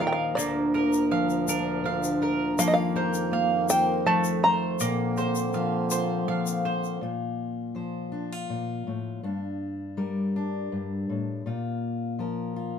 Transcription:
Already playing: D#2 A#2 F3 A#3 A#4 F5
0.00 D#3 A#4
0.07 G5
0.13 F5
0.35 D2 D3 A#3 D5, shaker
0.74 A#4
0.93 shaker
1.11 F3 F5
1.30 shaker
1.48 D4 A#4, shaker
1.84 D3 F5
2.04 shaker
2.22 A#4
2.57 F2 D#3 F3 A#3 F5, shaker
2.68 D#5
2.74 F5
2.96 A#4 C5
3.14 shaker
3.32 A#3 F5
3.69 A#4 C5 G5, shaker
4.06 F3 A3 A5
4.24 shaker
4.43 C5 A#5
4.80 A#2 D3 A#3 C4, shaker
5.17 C5, shaker
5.35 shaker
5.53 F3 F5, shaker
5.91 F4 C5, shaker
6.28 F3 F5
6.46 shaker
6.65 C5
6.84 shaker
7.01 A#2 F4
7.75 F3 C5
8.12 D4
8.32 F4
8.50 A#2
8.87 A2
9.23 G2 D4
9.97 G3 A#4
10.36 D4
10.72 G2
11.09 A2
11.46 A#2 F4
12.19 F3 A#4
12.56 F4

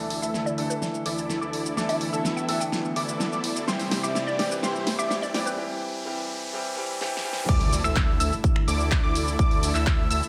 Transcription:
Already playing: D2 D3 E3 A3 D4 E4 A4 D5 D6, riser
0.10 open hi-hat
0.22 D2 E4 A4 E5 E6, shaker
0.34 snare, shaker
0.46 D5, shaker
0.57 D2 E3 A3 D4 E4 A4 E5 E6, open hi-hat
0.70 B4, shaker
0.82 snare, shaker
0.94 shaker
1.06 D2 E4 A4 D5 D6, open hi-hat
1.18 shaker
1.30 snare, shaker
1.41 D2 E4 A4 D5 D6, shaker
1.53 open hi-hat
1.66 shaker
1.76 D2 E3 A3 B3 D4 E4 A4 D5 D6, snare, shaker
1.89 E5, open hi-hat, shaker
2.01 open hi-hat
2.13 D2 E4 A4 E5 A5 E6, shaker
2.25 A5, snare, shaker
2.37 G5, shaker
2.47 D2 E3 A3 D4 E4 A4 E5 E6, open hi-hat
2.60 G5, shaker
2.72 snare, shaker
2.85 shaker
2.96 D2 E4 A4 D5 D6, open hi-hat
3.09 shaker
3.20 snare, shaker
3.32 D2 E4 A4 D5 D6, shaker
3.44 open hi-hat
3.56 shaker
3.66 C2 C3 E3 G3 C4 E4 G4 C5 C6, snare, shaker
3.79 open hi-hat, shaker
3.91 snare, open hi-hat
4.03 C2 E4 G4 D5 E5 D6, shaker
4.15 snare, shaker
4.27 D5, shaker
4.38 C2 E3 G3 C4 E4 G4 D5 D6, snare, open hi-hat
4.51 B4, shaker
4.62 C2 E3 G3 C4 E4 G4 C5 C6, snare, shaker
4.76 shaker
4.87 snare, open hi-hat
4.99 C2 E4 G4 D5 E5 D6, shaker
5.11 snare, shaker
5.22 D5, shaker
5.33 C2 E3 G3 C4 E4 G4 D5 D6, snare, open hi-hat
5.46 B4, shaker
5.57 E3 G3 C4 G4
6.05 E3 G3 C4 G4
6.52 E3 G3 C4 G4
6.76 E3 G3 C4 G4
7.00 E3 G3 C4 G4, snare
7.17 snare
7.24 E3 G3 C4 G4
7.33 snare
7.49 D2 D3 E3 A3 E4 A4 D5 D6, kick, crash, impact, shaker
7.61 open hi-hat
7.73 open hi-hat, shaker
7.84 D2 E4 A4 E5 E6, finger snap, shaker
7.96 kick, clap, shaker
8.20 D2 E4 A4 E5 E6, open hi-hat, shaker
8.33 shaker
8.44 kick, shaker
8.56 finger snap
8.68 D2 E4 A4 D5 D6, open hi-hat, shaker
8.80 shaker
8.91 finger snap, kick, clap, shaker
9.03 D2 E4 A4 D5 D6
9.15 open hi-hat, shaker
9.28 shaker
9.39 D2 E4 A4 D5 D6, kick, shaker
9.51 open hi-hat
9.63 open hi-hat, shaker
9.75 D2 E4 A4 E5 E6, clap, shaker
9.87 kick, clap, shaker
10.10 D2 E4 A4 E5 E6, open hi-hat, shaker
10.23 shaker

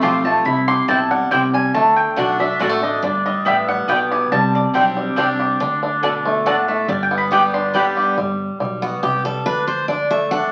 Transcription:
Already playing: A3 F4
0.01 B1 F3 A3 C4 F4 G4 C5 A5 C6
0.24 A3 C4 F4 A5
0.45 C2 C3 E4 B5
0.68 G4 C6
0.88 B1 B2 C4 E4 C5 G5 A5
1.11 G3 F#5
1.31 C2 C3 C4 E4 G4 C5 G5
1.54 G3 G#5
1.74 D2 D3 A3 A5
1.96 G5
2.16 B1 D3 A3 D4 F#4 D5 F#5 A5
2.38 D4 F#4 E5
2.59 A1 D3 G3 A3 D4 F#4 D5 F#5 A5
2.69 A3
2.83 D4 D#5
3.02 G1 G2 D4 D5
3.26 G3 D#5
3.45 A1 A2 B3 G4 D5 E5 G5
3.68 G3 F#5
3.88 B1 B2 B3 G4 D5 G5
4.11 G4 G#5
4.32 C2 C3 G3 A5
4.55 D5
4.74 B1 G3 C4 D4 G4 D5 G5
4.97 G3
5.16 C2 G3 C4 D4 G4 D5 G5
5.40 G4
5.60 D2 D3 D4
5.83 D4
6.03 B2 A3 D4 F#4 D5 A5
6.25 A3
6.46 A2 A3 D4 F#4 D5 F#5 A5
6.68 A3 E5
6.88 G1 G2 G3 D5
7.03 G5
7.11 B3
7.18 B5
7.31 D3 G3 B3 G4 D5 G5 D6
7.54 D4 C6
7.74 D3 G3 B3 G4 D5 G5 B5
7.97 G4
8.17 G1 G3
8.60 B1 G3
8.82 B3 F#4
9.03 C2 G4
9.25 G3 A4
9.46 D2 D4 B4
9.67 C5
9.88 D4 D5
10.10 A3 E5
10.31 D4 F#5

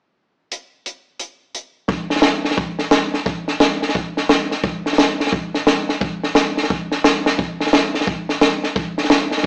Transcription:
0.52 closed hi-hat
0.86 closed hi-hat
1.19 closed hi-hat
1.55 closed hi-hat
1.88 kick, snare
2.10 snare
2.16 snare
2.22 snare, hi-hat pedal
2.45 snare
2.51 snare
2.57 kick, snare
2.79 snare
2.91 snare, hi-hat pedal
3.14 snare
3.26 kick, snare
3.48 snare
3.60 snare, hi-hat pedal
3.82 snare
3.89 snare
3.95 kick, snare
4.17 snare
4.29 snare, hi-hat pedal
4.51 snare
4.64 kick, snare
4.86 snare
4.93 snare
4.98 snare, hi-hat pedal
5.20 snare
5.27 snare
5.32 kick, snare
5.54 snare
5.67 snare, hi-hat pedal
5.89 snare
6.01 kick, snare
6.23 snare
6.35 snare, hi-hat pedal
6.57 snare
6.63 snare
6.70 kick, snare
6.92 snare
7.04 snare, hi-hat pedal
7.26 snare
7.38 kick, snare
7.60 snare
7.67 snare
7.73 snare, hi-hat pedal
7.94 snare
8.01 snare
8.07 kick, snare
8.29 snare
8.41 snare, hi-hat pedal
8.64 snare
8.76 kick, snare
8.98 snare
9.04 snare
9.10 snare, hi-hat pedal
9.31 snare
9.38 snare
9.43 snare

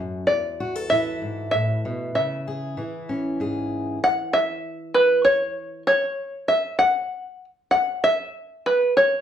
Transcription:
Already playing: F#2 F#3 C#4 A4
0.27 E2 D5
0.60 F#4
0.76 A4
0.90 E3 E4 E5
1.22 G#2
1.51 A2 E5
1.85 B2
2.15 C#3 E5
2.48 G#4
2.77 E3 E4
3.09 C#4
3.40 G#2 G#4
4.04 F#5
4.33 E5
4.94 B4
5.25 C#5
5.87 C#5
6.48 E5
6.79 F#5
7.71 F#5
8.04 E5
8.66 B4
8.97 C#5

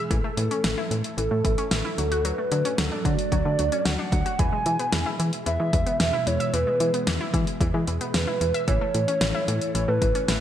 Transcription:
Already playing: E3 E4 G#4
0.10 A1 E3 A3 A4, kick, closed hi-hat
0.24 A3
0.37 A2 E3, closed hi-hat
0.51 C#4, closed hi-hat
0.64 A1 E3, snare, closed hi-hat
0.78 E4
0.91 A2 E3, closed hi-hat
1.04 closed hi-hat
1.18 A1 E3 A4, closed hi-hat
1.31 A2 A3
1.44 A1 E3, kick, closed hi-hat
1.58 C#4, closed hi-hat
1.71 A1 E3 A4, snare, closed hi-hat
1.85 E4
1.98 D2 F#3 D4 F#4, closed hi-hat
2.12 F#4, closed hi-hat
2.25 F#3 B4, closed hi-hat
2.38 A3
2.52 D3 F#3, closed hi-hat
2.65 C#4, closed hi-hat
2.78 D2 F#3 A4, snare, closed hi-hat
2.92 D4
3.05 D3 F#3 D5, kick, closed hi-hat
3.19 closed hi-hat
3.32 D2 F#3, kick, closed hi-hat
3.45 D3 A3
3.59 D2 F#3, closed hi-hat
3.72 C#4, closed hi-hat
3.85 D2 F#3 F#5, snare, closed hi-hat
3.99 D4
4.12 D2 F#3, kick, closed hi-hat
4.26 F#4, closed hi-hat
4.39 E2 B2 E3 G#3 E4 G#4 G#5, kick, closed hi-hat
4.52 G#3
4.66 E3, closed hi-hat
4.79 B3, closed hi-hat
4.93 E2 E3, snare, closed hi-hat
5.06 E4
5.19 E3, closed hi-hat
5.33 closed hi-hat
5.46 E2 E3 E5, closed hi-hat
5.60 E3 G#3
5.73 E2 E3, kick, closed hi-hat
5.86 B3, closed hi-hat
6.00 E2 E3 E5, snare, closed hi-hat
6.13 E4
6.27 E2 E3 C#5, closed hi-hat
6.40 E5, closed hi-hat
6.53 E2 E3 B4, closed hi-hat
6.67 G#3
6.80 E3, closed hi-hat
6.94 B3, closed hi-hat
7.07 E2 E3, snare, closed hi-hat
7.21 E4
7.34 E3, kick, closed hi-hat
7.47 closed hi-hat
7.61 E2 E3, kick, closed hi-hat
7.74 E3 G#3
7.87 E2 E3, closed hi-hat
8.01 B3, closed hi-hat
8.14 E2 E3 B4, snare, closed hi-hat
8.28 E4
8.41 E2 E3, closed hi-hat
8.54 E5, closed hi-hat
8.68 A1 E3 A3 E4 A4 C#5, kick, closed hi-hat
8.81 A3
8.95 A2 E3, closed hi-hat
9.08 C#4, closed hi-hat
9.21 A1 E3, snare, closed hi-hat
9.35 E4
9.48 A2 E3, closed hi-hat
9.61 closed hi-hat
9.75 A1 E3 C#5, closed hi-hat
9.88 A2 A3 B4
10.01 A1 E3, kick, closed hi-hat
10.15 C#4, closed hi-hat
10.28 A1 E3 B4, snare, closed hi-hat

